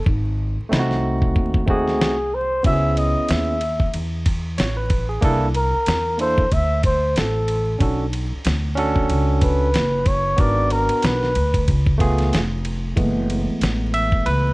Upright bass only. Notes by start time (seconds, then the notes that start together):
0.06 G#1
0.58 muted upright bass stroke
0.72 C2
1.36 D#2
2.01 C2
2.65 C#2
3.16 muted upright bass stroke
3.30 D#2
3.94 E2
4.58 A1
5.23 C2
5.74 muted upright bass stroke
5.87 E2
6.52 D2
7.17 A1
7.81 B1
8.32 muted upright bass stroke
8.46 D2
9.10 C#2
9.75 F#1
10.39 G#1
10.90 muted upright bass stroke
11.04 B1
11.36 D2
11.68 C#2
12.33 F1
12.97 F#1
13.48 muted upright bass stroke
13.61 A1
14.26 C#2